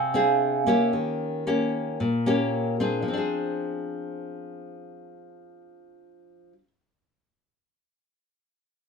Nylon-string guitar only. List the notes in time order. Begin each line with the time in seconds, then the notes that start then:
Already playing: C3
0.14 C4 D4 G#4
0.67 A#3 C#4 G4
0.93 D#3
1.47 A#3 C#4 G4
2.00 A#2
2.26 A#3 C#4 G4
2.80 C4 D4 G#4
3.02 F3
3.08 C4
3.13 D4
3.17 G#4